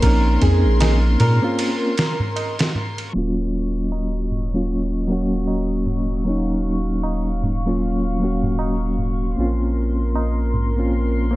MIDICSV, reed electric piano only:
0, 0, Header, 1, 2, 480
1, 0, Start_track
1, 0, Tempo, 779221
1, 17, Time_signature, 4, 2, 24, 8
1, 6998, End_track
2, 0, Start_track
2, 0, Title_t, "Reed electric piano"
2, 0, Program_c, 0, 4
2, 9, Note_on_c, 0, 58, 85
2, 18, Note_on_c, 0, 60, 74
2, 29, Note_on_c, 0, 61, 77
2, 38, Note_on_c, 0, 63, 89
2, 840, Note_off_c, 0, 58, 0
2, 844, Note_off_c, 0, 60, 0
2, 850, Note_off_c, 0, 61, 0
2, 854, Note_off_c, 0, 63, 0
2, 874, Note_on_c, 0, 58, 80
2, 880, Note_on_c, 0, 60, 79
2, 883, Note_on_c, 0, 61, 73
2, 890, Note_on_c, 0, 65, 95
2, 1192, Note_off_c, 0, 58, 0
2, 1195, Note_off_c, 0, 60, 0
2, 1196, Note_off_c, 0, 61, 0
2, 1199, Note_off_c, 0, 65, 0
2, 1929, Note_on_c, 0, 54, 63
2, 1940, Note_on_c, 0, 58, 59
2, 1951, Note_on_c, 0, 61, 59
2, 1960, Note_on_c, 0, 65, 71
2, 2760, Note_off_c, 0, 54, 0
2, 2765, Note_off_c, 0, 58, 0
2, 2771, Note_off_c, 0, 61, 0
2, 2775, Note_off_c, 0, 65, 0
2, 2793, Note_on_c, 0, 54, 60
2, 2799, Note_on_c, 0, 58, 58
2, 2803, Note_on_c, 0, 61, 58
2, 2810, Note_on_c, 0, 65, 66
2, 3111, Note_off_c, 0, 54, 0
2, 3114, Note_off_c, 0, 58, 0
2, 3116, Note_off_c, 0, 61, 0
2, 3119, Note_off_c, 0, 65, 0
2, 3125, Note_on_c, 0, 54, 80
2, 3135, Note_on_c, 0, 58, 72
2, 3145, Note_on_c, 0, 61, 75
2, 3154, Note_on_c, 0, 66, 89
2, 3827, Note_off_c, 0, 54, 0
2, 3832, Note_off_c, 0, 58, 0
2, 3837, Note_off_c, 0, 61, 0
2, 3841, Note_off_c, 0, 66, 0
2, 3847, Note_on_c, 0, 54, 70
2, 3856, Note_on_c, 0, 58, 63
2, 3866, Note_on_c, 0, 61, 68
2, 3877, Note_on_c, 0, 63, 80
2, 4679, Note_off_c, 0, 54, 0
2, 4683, Note_off_c, 0, 58, 0
2, 4688, Note_off_c, 0, 61, 0
2, 4693, Note_off_c, 0, 63, 0
2, 4716, Note_on_c, 0, 54, 72
2, 4722, Note_on_c, 0, 58, 71
2, 4727, Note_on_c, 0, 61, 64
2, 4733, Note_on_c, 0, 65, 79
2, 5033, Note_off_c, 0, 54, 0
2, 5036, Note_off_c, 0, 58, 0
2, 5038, Note_off_c, 0, 61, 0
2, 5041, Note_off_c, 0, 65, 0
2, 5047, Note_on_c, 0, 54, 60
2, 5058, Note_on_c, 0, 58, 53
2, 5069, Note_on_c, 0, 61, 58
2, 5078, Note_on_c, 0, 66, 70
2, 5748, Note_off_c, 0, 54, 0
2, 5754, Note_off_c, 0, 58, 0
2, 5759, Note_off_c, 0, 61, 0
2, 5764, Note_off_c, 0, 66, 0
2, 5765, Note_on_c, 0, 58, 66
2, 5775, Note_on_c, 0, 60, 58
2, 5785, Note_on_c, 0, 61, 61
2, 5794, Note_on_c, 0, 65, 75
2, 6598, Note_off_c, 0, 58, 0
2, 6602, Note_off_c, 0, 60, 0
2, 6607, Note_off_c, 0, 61, 0
2, 6612, Note_off_c, 0, 65, 0
2, 6635, Note_on_c, 0, 58, 64
2, 6640, Note_on_c, 0, 60, 56
2, 6644, Note_on_c, 0, 61, 60
2, 6650, Note_on_c, 0, 65, 71
2, 6952, Note_off_c, 0, 58, 0
2, 6955, Note_off_c, 0, 60, 0
2, 6956, Note_off_c, 0, 61, 0
2, 6959, Note_off_c, 0, 65, 0
2, 6966, Note_on_c, 0, 58, 89
2, 6977, Note_on_c, 0, 60, 82
2, 6998, Note_off_c, 0, 58, 0
2, 6998, Note_off_c, 0, 60, 0
2, 6998, End_track
0, 0, End_of_file